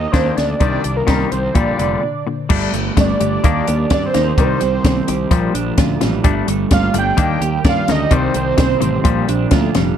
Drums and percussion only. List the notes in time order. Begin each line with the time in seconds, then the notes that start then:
0.14 kick, snare, closed hi-hat
0.38 snare, closed hi-hat
0.60 kick, closed hi-hat
0.84 closed hi-hat
1.08 kick, snare, closed hi-hat
1.32 closed hi-hat
1.55 kick, closed hi-hat
1.79 closed hi-hat
2.50 kick, crash
2.74 closed hi-hat
2.97 kick, snare, closed hi-hat
3.21 closed hi-hat
3.44 kick, closed hi-hat
3.67 closed hi-hat
3.90 kick, snare, closed hi-hat
4.14 snare, closed hi-hat
4.38 kick, closed hi-hat
4.61 closed hi-hat
4.85 kick, snare, closed hi-hat
5.08 closed hi-hat
5.31 kick, closed hi-hat
5.55 closed hi-hat
5.78 kick, snare, closed hi-hat
6.01 snare, closed hi-hat
6.24 kick, closed hi-hat
6.48 closed hi-hat
6.71 kick, snare, closed hi-hat
6.94 closed hi-hat
7.18 kick, closed hi-hat
7.42 closed hi-hat
7.65 kick, snare, closed hi-hat
7.88 snare, closed hi-hat
8.11 kick, closed hi-hat
8.34 closed hi-hat
8.58 kick, snare, closed hi-hat
8.82 closed hi-hat
9.05 kick, closed hi-hat
9.29 closed hi-hat
9.51 kick, snare, closed hi-hat
9.75 snare, closed hi-hat